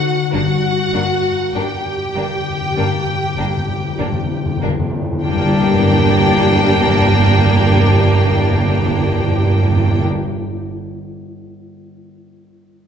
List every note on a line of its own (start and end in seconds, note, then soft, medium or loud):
0.00 0.38 D3 medium
0.00 0.38 D#4 soft
0.00 0.33 F#4 medium
0.00 0.38 A4 soft
0.00 0.32 F#5 medium
0.32 0.42 G1 medium
0.32 0.43 G2 soft
0.32 0.41 G2 soft
0.32 4.23 G2 soft
0.32 0.40 A#3 soft
0.32 0.40 D4 soft
0.32 1.53 F#4 medium
0.32 1.52 F#5 medium
0.44 0.54 G2 soft
0.55 0.65 G2 soft
0.66 0.75 G2 soft
0.76 0.86 G2 soft
0.87 0.97 G2 soft
0.94 1.02 G1 soft
0.94 1.02 G2 medium
0.94 2.76 A#3 soft
0.94 1.02 A#3 soft
0.94 1.02 D4 soft
0.98 1.08 G2 soft
1.09 1.19 G2 soft
1.20 1.29 G2 soft
1.30 1.39 G2 soft
1.41 1.50 G2 soft
1.51 1.63 G1 medium
1.51 1.62 G2 soft
1.51 4.63 G5 medium
1.56 1.64 A#3 soft
1.56 3.99 D4 soft
1.56 1.64 D4 soft
1.56 4.64 G4 soft
1.74 1.84 G2 soft
1.85 1.94 G2 soft
1.95 2.05 G2 soft
2.06 2.16 G2 soft
2.15 2.24 G1 soft
2.15 2.23 G2 soft
2.15 2.27 G2 soft
2.15 3.37 D3 soft
2.15 2.24 A#3 soft
2.15 2.24 D4 soft
2.28 2.37 G2 soft
2.38 2.48 G2 soft
2.50 2.60 G2 soft
2.61 2.70 G2 soft
2.71 2.81 G2 medium
2.76 2.86 G1 soft
2.76 2.84 G2 medium
2.76 5.37 A#3 soft
2.76 2.86 A#3 soft
2.76 2.86 D4 soft
2.83 2.92 G2 soft
2.93 3.02 G2 medium
3.04 3.13 G2 medium
3.14 3.23 G2 medium
3.24 3.34 G2 medium
3.35 3.47 G1 soft
3.35 3.45 G2 medium
3.35 3.46 G2 soft
3.35 4.62 D3 soft
3.35 3.47 A#3 soft
3.35 3.46 D4 soft
3.46 3.56 G2 medium
3.57 3.67 G2 medium
3.68 3.79 G2 medium
3.80 3.89 G2 medium
3.90 3.99 G2 medium
3.99 4.08 G1 soft
3.99 4.08 G2 medium
3.99 4.11 G2 medium
3.99 4.07 A#3 soft
3.99 4.08 D4 soft
3.99 5.44 D4 soft
4.12 4.22 G2 medium
4.23 4.33 G2 medium
4.34 4.44 G2 medium
4.46 4.56 G2 medium
4.57 4.67 G2 medium
4.62 4.71 G1 soft
4.62 4.71 G2 soft
4.62 5.29 D3 soft
4.62 4.70 A#3 soft
4.62 4.71 D4 soft
4.68 4.78 G2 medium
4.79 4.89 G2 medium
4.90 5.01 G2 medium
5.02 5.11 G2 medium
5.12 5.22 G2 medium
5.23 10.05 G1 medium
5.23 5.30 G2 medium
5.23 10.06 G2 soft
5.23 10.06 G2 medium
5.23 10.04 A#3 medium
5.23 10.05 D4 medium
5.23 10.06 G4 medium
5.23 10.04 G5 medium
5.30 5.36 G2 medium
5.30 10.13 G3 medium
5.36 5.41 G2 medium
5.36 10.20 A#3 medium
5.41 5.48 G2 medium
5.45 5.54 G2 medium
5.45 10.27 D4 soft
5.53 5.61 G2 medium
5.53 10.34 A#4 medium
5.60 5.67 G2 medium
5.60 10.41 D5 soft
5.67 5.74 G2 medium
5.74 5.80 G2 medium
5.81 5.87 G2 medium
5.87 5.94 G2 medium
5.94 6.00 G2 medium
6.00 6.06 G2 medium
6.06 6.12 G2 medium
6.12 6.19 G2 medium
6.19 6.25 G2 medium
6.25 6.31 G2 medium
6.31 6.37 G2 medium
6.37 6.43 G2 medium
6.44 6.50 G2 medium
6.50 6.56 G2 medium
6.56 6.63 G2 medium
6.63 6.69 G2 medium
6.69 6.75 G2 medium
6.75 6.81 G2 medium
6.81 6.87 G2 medium
6.87 6.94 G2 medium
6.94 7.00 G2 medium
7.00 7.06 G2 medium
7.06 7.13 G2 medium
7.13 7.19 G2 medium
7.19 7.25 G2 medium
7.25 7.31 G2 medium
7.32 7.38 G2 medium
7.39 7.45 G2 medium
7.45 7.50 G2 medium
7.50 7.56 G2 medium
7.56 7.62 G2 medium
7.62 7.68 G2 medium
7.68 7.74 G2 medium
7.74 7.81 G2 medium
7.81 7.87 G2 medium
7.87 7.93 G2 medium
7.93 7.99 G2 medium
8.00 8.06 G2 medium
8.06 8.12 G2 medium
8.12 8.19 G2 medium
8.19 8.25 G2 medium
8.25 8.31 G2 medium
8.31 8.37 G2 medium
8.37 8.43 G2 medium
8.43 8.49 G2 medium
8.49 8.55 G2 medium
8.55 8.61 G2 medium
8.61 8.67 G2 medium
8.68 8.74 G2 medium
8.74 8.81 G2 medium
8.81 8.87 G2 medium
8.88 8.94 G2 medium
8.94 9.00 G2 medium
9.00 9.06 G2 medium
9.07 9.12 G2 medium
9.12 9.19 G2 medium
9.19 9.26 G2 medium
9.26 9.32 G2 medium
9.32 9.37 G2 medium
9.37 9.44 G2 medium
9.45 9.51 G2 medium
9.51 9.57 G2 medium
9.58 9.64 G2 medium
9.64 9.71 G2 medium
9.71 9.77 G2 medium
9.77 9.83 G2 medium
9.83 9.89 G2 medium
9.89 9.96 G2 medium
9.96 10.02 G2 medium
10.02 10.08 G2 medium